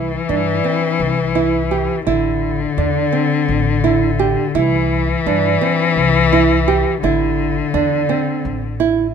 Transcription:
Already playing: upright bass C2, cello E3, nylon-string guitar E4
0.29 upright bass G2, nylon-string guitar D4
0.64 nylon-string guitar C4
1.00 upright bass C2
1.35 nylon-string guitar E4
1.71 nylon-string guitar G4
2.06 upright bass A1, cello D3, nylon-string guitar E4
2.77 upright bass E2, nylon-string guitar D4
3.12 nylon-string guitar C4
3.48 upright bass A1
3.84 nylon-string guitar E4
4.19 nylon-string guitar G4
4.55 upright bass C2, cello E3, nylon-string guitar E4
5.26 upright bass G2, nylon-string guitar D4
5.61 nylon-string guitar C4
5.96 upright bass C2
6.33 nylon-string guitar E4
6.68 nylon-string guitar G4
7.02 upright bass A1, cello D3, nylon-string guitar E4
7.74 upright bass E2, nylon-string guitar D4
8.09 nylon-string guitar C4
8.45 upright bass A1
8.80 nylon-string guitar E4

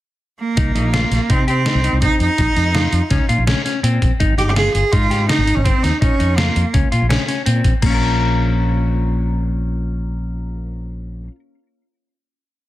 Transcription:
0.40 cello A#3
0.57 fretless electric bass C2, clean electric guitar D#4, kick, closed hi-hat
0.75 fretless electric bass A#1, clean electric guitar D#4, closed hi-hat
0.93 clean electric guitar F4, snare, closed hi-hat
1.11 fretless electric bass A#1, snare, closed hi-hat
1.30 fretless electric bass C3, cello C4, clean electric guitar D#4, kick, closed hi-hat
1.47 cello C4, clean electric guitar G4, closed hi-hat
1.66 clean electric guitar D#4, snare, closed hi-hat
1.75 fretless electric bass C2
1.84 clean electric guitar D#4, closed hi-hat
1.93 fretless electric bass C2
2.02 clean electric guitar C4, cello D#4, kick, snare, closed hi-hat
2.20 fretless electric bass F2, cello D#4, closed hi-hat
2.38 fretless electric bass A#1, clean electric guitar D#4, kick, closed hi-hat
2.56 fretless electric bass F2, clean electric guitar D#4, snare, closed hi-hat
2.74 clean electric guitar F4, snare, closed hi-hat
2.92 fretless electric bass F2, closed hi-hat
3.10 fretless electric bass C#2, clean electric guitar C#4, kick, snare, closed hi-hat
3.29 fretless electric bass A#2, clean electric guitar F4, closed hi-hat
3.38 fretless electric bass A#1
3.47 clean electric guitar C#4, snare, closed hi-hat
3.65 clean electric guitar C#4, snare, closed hi-hat
3.83 fretless electric bass A#2, clean electric guitar C4, closed hi-hat
4.02 fretless electric bass A#1, kick, closed hi-hat
4.20 fretless electric bass G#1, clean electric guitar D#4, kick, closed hi-hat
4.37 fretless electric bass G1, clean electric guitar D#4, cello G4, closed hi-hat
4.46 cello G4
4.56 clean electric guitar F4, cello G#4, snare, closed hi-hat
4.74 fretless electric bass G1, cello G#4, closed hi-hat
4.92 fretless electric bass G#2, clean electric guitar D#4, cello F4, kick, closed hi-hat
5.10 clean electric guitar G4, snare, closed hi-hat
5.29 clean electric guitar D#4, cello D#4, snare, closed hi-hat
5.38 fretless electric bass G#1
5.46 clean electric guitar D#4, closed hi-hat
5.55 fretless electric bass G#1, cello C#4
5.64 cello C4, clean electric guitar C4, kick, closed hi-hat
5.83 fretless electric bass D#2, cello D#4, snare, closed hi-hat
6.01 fretless electric bass A#1, cello C#4, clean electric guitar D#4, kick, closed hi-hat
6.19 fretless electric bass F2, clean electric guitar D#4, closed hi-hat
6.37 cello A#3, clean electric guitar F4, snare, closed hi-hat
6.56 fretless electric bass F2, closed hi-hat
6.74 fretless electric bass C#2, clean electric guitar C#4, kick, closed hi-hat
6.92 fretless electric bass A#2, clean electric guitar F4, closed hi-hat
7.02 fretless electric bass A#1
7.09 clean electric guitar C#4, snare, closed hi-hat
7.28 clean electric guitar C#4, snare, closed hi-hat
7.46 fretless electric bass A#2, clean electric guitar C4, closed hi-hat
7.64 fretless electric bass A#1, kick, closed hi-hat
7.82 fretless electric bass A#1, clean electric guitar A#3, kick, crash
7.86 clean electric guitar C#4 F4
7.94 clean electric guitar A#4

